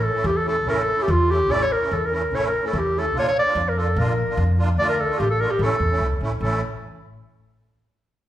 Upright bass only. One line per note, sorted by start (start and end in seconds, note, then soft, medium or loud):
0.24 0.66 E2 loud
0.66 0.91 A1 loud
1.08 1.49 E2 loud
1.49 1.74 A1 medium
1.92 2.33 E2 medium
2.33 2.57 A1 medium
2.73 3.14 E2 medium
3.14 3.39 A#1 medium
3.55 3.98 F2 loud
3.96 4.21 A#1 loud
4.37 4.79 F2 loud
4.79 5.03 D2 medium
5.20 5.44 A1 loud
5.59 5.72 A1 loud
5.80 5.99 E2 medium
6.00 6.19 C#2 medium
6.21 6.39 A1 medium
6.41 6.60 A1 medium